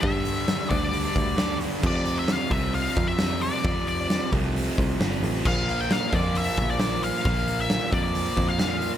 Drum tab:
CC |--------|x-------|--------|x-------|
HH |oooooooo|-ooooooo|oooooooo|-ooooooo|
SD |--o---o-|--o---o-|--o---o-|--o---o-|
BD |o--o-o--|o--o-o--|o--o-o--|o--o-o--|

CC |--------|
HH |oooooooo|
SD |--o---o-|
BD |o--o-o--|